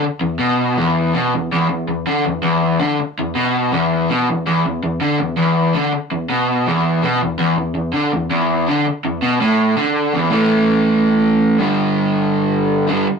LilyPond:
\new Staff \with { instrumentName = "Overdriven electric guitar" } { \clef bass \time 4/4 \key a \lydian \tempo 4 = 164 r8 e,8 b,4 e,4 b,8 e,8 | e,8 e,8 e,8 d8 e,8 e,4 d8 | r8 e,8 b,4 e,4 b,8 e,8 | e,8 e,8 e,8 d8 e,8 e,4 d8 |
r8 e,8 b,4 e,4 b,8 e,8 | e,8 e,8 e,8 d8 e,8 e,4 d8 | r8 e,8 b,8 a,4 d4 e,8 | <a, e a>2.~ <a, e a>8 <g, d g>8~ |
<g, d g>2. <g, d g>8 r8 | }